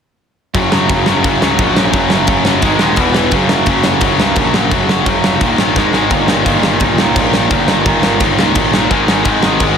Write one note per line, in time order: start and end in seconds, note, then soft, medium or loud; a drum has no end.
0.54 0.71 F#1 medium
0.54 0.71 F#2 medium
0.54 0.72 C#3 loud
0.54 0.72 F#3 loud
0.54 kick loud
0.54 crash medium
0.72 0.89 F#1 medium
0.72 0.88 F#2 medium
0.72 0.88 C#3 medium
0.72 0.90 F#3 medium
0.72 snare loud
0.89 1.06 F#1 medium
0.89 1.06 F#2 medium
0.89 1.07 C#3 loud
0.89 1.07 F#3 medium
0.89 kick loud
0.89 crash medium
1.06 1.23 F#1 medium
1.06 1.23 F#2 medium
1.06 1.24 C#3 medium
1.06 1.24 F#3 medium
1.06 snare loud
1.24 1.40 F#1 medium
1.24 1.40 F#2 medium
1.24 1.41 C#3 medium
1.24 1.41 F#3 medium
1.24 kick loud
1.24 crash medium
1.42 1.58 C#2 medium
1.42 1.57 F#2 medium
1.42 1.58 C#3 medium
1.42 1.59 F#3 loud
1.42 snare loud
1.58 1.92 A#1 medium
1.58 1.76 F#2 medium
1.58 1.76 C#3 medium
1.58 1.77 F#3 medium
1.58 kick loud
1.58 crash medium
1.76 1.90 F#2 medium
1.76 1.90 C#3 medium
1.76 1.92 F#3 medium
1.76 snare loud
1.91 2.10 F#1 medium
1.91 2.09 F#2 loud
1.91 2.10 C#3 loud
1.91 2.10 F#3 loud
1.91 kick loud
1.91 crash medium
2.10 2.27 F#1 medium
2.10 2.25 F#2 medium
2.10 2.26 C#3 medium
2.10 2.27 F#3 medium
2.10 snare loud
2.26 2.45 F#1 medium
2.26 2.43 F#2 medium
2.26 2.45 C#3 loud
2.26 2.45 F#3 medium
2.26 kick loud
2.26 crash medium
2.44 2.62 F#1 medium
2.44 2.62 F#2 medium
2.44 2.62 C#3 medium
2.44 2.62 F#3 medium
2.44 snare loud
2.62 2.79 G#1 loud
2.62 2.80 G#2 loud
2.62 2.80 D#3 loud
2.62 2.82 G#3 loud
2.62 kick loud
2.62 crash medium
2.79 2.97 D#1 medium
2.79 2.98 G#2 medium
2.79 2.98 D#3 medium
2.79 2.98 G#3 medium
2.79 snare loud
2.96 3.31 E1 medium
2.96 3.13 E2 medium
2.96 3.14 B2 medium
2.96 3.15 E3 loud
2.96 kick loud
2.96 crash medium
3.14 3.32 E2 medium
3.14 3.32 B2 medium
3.14 3.32 E3 medium
3.14 snare loud
3.31 3.49 F#1 loud
3.31 3.48 F#2 medium
3.31 3.48 C#3 loud
3.31 3.49 F#3 loud
3.31 kick loud
3.31 crash medium
3.49 3.66 F#1 medium
3.49 3.66 F#2 medium
3.49 3.67 C#3 medium
3.49 3.68 F#3 medium
3.49 snare loud
3.66 3.84 F#1 medium
3.66 3.83 F#2 medium
3.66 3.84 C#3 medium
3.66 3.84 F#3 loud
3.66 kick loud
3.66 crash medium
3.84 4.01 F#1 medium
3.84 4.01 F#2 medium
3.84 4.00 C#3 medium
3.84 4.01 F#3 medium
3.84 snare loud
4.01 4.18 F#1 medium
4.01 4.18 F#2 medium
4.01 4.19 C#3 medium
4.01 4.20 F#3 medium
4.01 kick loud
4.01 crash medium
4.19 4.36 C#2 medium
4.19 4.36 F#2 medium
4.19 4.36 C#3 medium
4.19 4.37 F#3 medium
4.19 snare loud
4.36 4.70 A#1 medium
4.36 4.52 F#2 medium
4.36 4.53 C#3 medium
4.36 4.54 F#3 medium
4.36 kick loud
4.36 crash medium
4.53 4.71 F#2 medium
4.53 4.72 C#3 loud
4.53 4.73 F#3 loud
4.53 snare loud
4.71 4.88 F#1 medium
4.71 4.88 F#2 loud
4.71 4.89 C#3 medium
4.71 4.89 F#3 loud
4.71 kick loud
4.71 crash medium
4.89 5.05 F#1 medium
4.89 5.07 F#2 medium
4.89 5.07 C#3 medium
4.89 5.07 F#3 loud
4.89 snare loud
5.06 5.23 F#1 loud
5.06 5.23 F#2 medium
5.06 5.23 C#3 loud
5.06 5.24 F#3 loud
5.06 kick loud
5.06 crash medium
5.24 5.40 F1 medium
5.24 5.41 F#2 medium
5.24 5.41 C#3 loud
5.24 5.41 F#3 medium
5.24 snare loud
5.41 5.58 D#1 loud
5.41 5.58 D#2 loud
5.41 5.58 A#2 medium
5.41 5.59 D#3 medium
5.41 kick loud
5.41 crash medium
5.58 5.75 A#1 medium
5.58 5.76 D#2 medium
5.58 5.76 A#2 medium
5.58 5.76 D#3 loud
5.58 snare loud
5.76 6.09 G#1 medium
5.76 5.92 G#2 medium
5.76 5.93 D#3 medium
5.76 5.93 G#3 medium
5.76 kick loud
5.76 snare medium
5.93 6.10 G#2 medium
5.93 6.11 D#3 medium
5.93 6.10 G#3 medium
5.93 snare medium
6.10 6.28 G1 medium
6.10 6.29 D#2 medium
6.10 6.29 A#2 loud
6.10 6.30 D#3 loud
6.10 kick loud
6.10 crash medium
6.28 6.45 G1 medium
6.28 6.46 D#2 medium
6.28 6.47 A#2 medium
6.28 6.47 D#3 medium
6.28 snare loud
6.46 6.62 G1 medium
6.46 6.63 D#2 medium
6.46 6.63 A#2 loud
6.46 6.64 D#3 loud
6.46 kick loud
6.46 crash medium
6.63 6.80 G1 medium
6.63 6.81 D#2 medium
6.63 6.81 A#2 medium
6.63 6.82 D#3 medium
6.63 snare loud
6.80 6.97 G1 medium
6.80 6.99 D#2 medium
6.80 6.98 A#2 medium
6.80 7.00 D#3 medium
6.80 kick loud
6.80 crash medium
6.98 7.15 C#2 medium
6.98 7.16 D#2 medium
6.98 7.17 A#2 medium
6.98 7.17 D#3 medium
6.98 snare loud
7.16 7.49 A#1 medium
7.16 7.34 D#2 medium
7.16 7.35 A#2 medium
7.16 7.35 D#3 medium
7.16 kick loud
7.16 crash medium
7.33 7.50 D#2 medium
7.33 7.51 A#2 medium
7.33 7.51 D#3 medium
7.33 snare loud
7.50 7.67 G1 medium
7.50 7.67 D#2 loud
7.50 7.67 A#2 medium
7.50 7.68 D#3 loud
7.50 kick loud
7.50 crash medium
7.68 7.85 G1 medium
7.68 7.85 D#2 medium
7.68 7.86 A#2 medium
7.68 7.86 D#3 medium
7.68 snare loud
7.86 8.02 G1 loud
7.86 8.02 D#2 medium
7.86 8.04 A#2 medium
7.86 8.04 D#3 medium
7.86 kick loud
7.86 crash medium
8.03 8.20 G1 medium
8.03 8.22 D#2 medium
8.03 8.22 A#2 medium
8.03 8.22 D#3 medium
8.03 snare loud
8.20 8.37 G1 loud
8.20 8.39 D#2 medium
8.20 8.39 A#2 medium
8.20 8.40 D#3 medium
8.20 kick loud
8.20 crash medium
8.37 8.54 C#2 medium
8.37 8.55 D#2 medium
8.37 8.55 A#2 medium
8.37 8.56 D#3 medium
8.37 snare loud
8.55 8.90 A#1 medium
8.55 8.73 D#2 medium
8.55 8.73 A#2 medium
8.55 8.74 D#3 medium
8.55 kick loud
8.55 crash medium
8.74 8.90 D#2 medium
8.74 8.90 A#2 medium
8.74 8.90 D#3 loud
8.74 snare loud
8.90 9.07 G#1 medium
8.90 9.08 G#2 loud
8.90 9.07 D#3 loud
8.90 9.09 G#3 loud
8.90 kick loud
8.90 crash soft
9.08 9.24 G#1 medium
9.08 9.24 G#2 medium
9.08 9.23 D#3 medium
9.08 9.25 G#3 loud
9.08 snare loud
9.24 9.42 G#1 loud
9.24 9.42 G#2 medium
9.24 9.42 D#3 medium
9.24 9.43 G#3 medium
9.24 kick loud
9.24 crash medium
9.42 9.60 G#1 medium
9.42 9.60 G#2 medium
9.42 9.61 D#3 medium
9.42 9.61 G#3 medium
9.42 snare loud
9.60 9.77 G#1 medium
9.60 9.75 G#2 medium
9.60 9.76 D#3 medium
9.60 9.77 G#3 medium
9.60 kick loud
9.60 crash medium